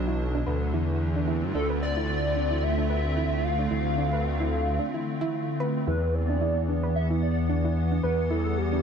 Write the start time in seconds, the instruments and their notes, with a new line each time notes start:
Already playing: detuned saw bass B1, analog synth pad B2 F#3 D4
0.08 synth arpeggio sound E4
0.35 synth arpeggio sound D4
0.46 detuned saw bass D2, analog synth pad D3, synth arpeggio sound B4
0.73 detuned saw bass E2, synth arpeggio sound E4
0.78 analog synth pad A3
1.16 analog synth pad C4, synth arpeggio sound D4
1.28 synth arpeggio sound E4
1.35 analog synth pad F4
1.43 detuned saw bass G2
1.55 detuned saw bass D2, synth arpeggio sound D4, soft synth lead A4
1.70 synth arpeggio sound B4
1.82 soft synth lead D5
1.97 synth arpeggio sound E4
2.36 synth arpeggio sound D4
2.51 synth arpeggio sound E4
2.63 soft synth lead E5
2.78 synth arpeggio sound D4
2.90 synth arpeggio sound B4
3.17 synth arpeggio sound E4
3.44 soft synth lead F5
3.59 synth arpeggio sound D4
3.71 detuned saw bass D2, synth arpeggio sound E4
3.98 synth arpeggio sound D4
4.13 synth arpeggio sound B4
4.40 synth arpeggio sound E4
4.79 synth arpeggio sound D4
4.94 synth arpeggio sound E4
5.21 synth arpeggio sound E4
5.60 synth arpeggio sound B4
5.87 detuned saw bass E2, analog synth pad E3, synth arpeggio sound E4, soft synth lead B4
6.14 analog synth pad B3, soft synth lead D5
6.29 synth arpeggio sound D4
6.41 synth arpeggio sound E4
6.68 synth arpeggio sound D4
6.83 synth arpeggio sound B4
6.92 soft synth lead E5, analog synth pad F#5
7.10 synth arpeggio sound E4
7.22 soft synth lead D5
7.49 synth arpeggio sound D4
7.64 synth arpeggio sound E4
7.91 synth arpeggio sound D4
8.03 detuned saw bass E2, synth arpeggio sound B4, soft synth lead B4
8.20 analog synth pad G3
8.30 synth arpeggio sound E4, soft synth lead A4
8.57 soft synth lead G4
8.73 synth arpeggio sound D4